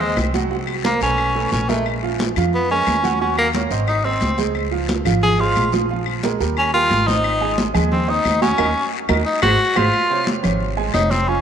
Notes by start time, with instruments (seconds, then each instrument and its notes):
Already playing: upright bass D#2
0.00 tenor saxophone G#3, upright piano C4 C5 D#5, high conga
0.17 upright bass C2, high conga, short guiro, claves
0.34 upright piano F#3 F#4 F#5, high conga, short guiro
0.51 upright piano F#3 F#4 F#5, high conga, long guiro
0.67 high conga, claves
0.84 upright piano A#3 A#4 C5, tenor saxophone A#3, high conga, short guiro
1.01 upright bass B1, upright piano A3 A4 B4, tenor saxophone C#4, short guiro
1.18 high conga, long guiro, claves
1.35 upright piano A3 A4 B4, high conga
1.52 upright bass A#1, tenor saxophone C#4, high conga, short guiro
1.69 upright piano G#3 G#4 A#4, tenor saxophone A3, high conga, short guiro
1.86 high conga, long guiro, claves
2.03 upright piano F3 F4 F5, high conga
2.20 high conga, short guiro
2.36 upright bass F2, upright piano F3 F4 F5, low conga, short guiro, claves
2.53 tenor saxophone B3, high conga, long guiro
2.71 upright piano G#3 G#4 A#4, tenor saxophone C#4, high conga
2.87 upright bass D#2, high conga, short guiro, claves
3.03 upright piano F#3 F#4 F#5, high conga, short guiro
3.20 upright piano F#3 F#4 F#5, tenor saxophone C#4, high conga, long guiro
3.38 tenor saxophone A#3, high conga, claves
3.53 upright piano A#3 A#4 C#5, high conga, short guiro
3.70 upright bass G#1, upright piano C4 C5 D#5, short guiro
3.87 tenor saxophone D#4, high conga, long guiro, claves
4.05 tenor saxophone C4, upright piano C4 C5 D#5, high conga
4.21 upright bass C#2, high conga, short guiro
4.38 upright piano G#3 G#4 C5, high conga, short guiro
4.55 high conga, long guiro, claves
4.71 upright piano F3 F4 F5, high conga
4.88 high conga, short guiro
5.05 upright bass G#1, upright piano F3 F4 F5, low conga, short guiro, claves
5.22 tenor saxophone G#4, high conga, low conga, long guiro
5.39 upright piano G#3 G#4 C5, tenor saxophone F4, high conga
5.56 upright bass A#1, high conga, short guiro, claves
5.72 upright piano F3 F4 F5, high conga, short guiro
5.89 upright piano F3 F4 F5, high conga, long guiro
6.06 high conga, claves
6.23 upright piano G#3 G#4 A#4, high conga, short guiro
6.40 upright bass D#2, upright piano G3 G4 A#4, short guiro
6.57 tenor saxophone C#4, high conga, long guiro, claves
6.74 upright piano G3 G4 A#4, tenor saxophone F4, high conga
6.90 upright bass G#1, high conga, short guiro
7.07 upright piano C4 C5 D#5, tenor saxophone D#4, high conga, short guiro
7.24 high conga, long guiro, claves
7.41 upright piano G#3 G#4 G#5, high conga
7.58 high conga, short guiro
7.74 upright bass D#2, upright piano G#3 G#4 G#5, low conga, short guiro, claves
7.92 tenor saxophone C4, high conga, low conga, long guiro
8.08 upright piano C4 C5 D#5, tenor saxophone D#4, high conga
8.25 upright bass D#2, high conga, short guiro, claves
8.41 upright piano F#3 F#4 F#5, tenor saxophone C#4, high conga, short guiro
8.58 upright bass D#2, upright piano D#4 F#4 A#4, high conga, long guiro, claves
9.09 upright bass D#2, upright piano D#4 F#4 A#4, high conga, long guiro, claves
9.26 tenor saxophone D#4
9.42 upright bass G#1, tenor saxophone F#4, upright piano F#4 G#4 C5, high conga, claves
9.76 upright bass G#1, tenor saxophone F4, upright piano F#4 G#4 C5, high conga, long guiro, claves
9.93 high conga, long guiro, claves
10.10 upright piano C3 C5 C#5, high conga
10.27 high conga, short guiro
10.43 upright bass G#1, upright piano C3 C5 C#5, low conga, short guiro, claves
10.60 high conga, long guiro
10.77 upright piano G#3 G#4 G#5, high conga
10.94 upright bass F1, upright piano C3 C5 C#5, tenor saxophone D#4, high conga, short guiro, claves
11.11 tenor saxophone C4, high conga, short guiro
11.28 upright piano F3 F4 F5, tenor saxophone C#4, high conga, long guiro